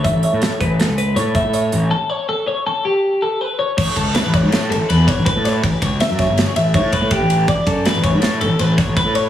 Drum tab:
CC |----------|----------|x---------|----------|
RD |----------|----------|-xxxxxxxxx|xxxxxxxxxx|
HH |xxxxxxxxxx|----------|----------|----------|
SD |--o-o-o---|----------|--o-o----o|--ooo-----|
BD |o--o---o--|----------|oo-o---oo-|oo-o--ooo-|

CC |----------|
RD |xxxxxxxxxx|
HH |----------|
SD |--o-o--o--|
BD |oo-o---oo-|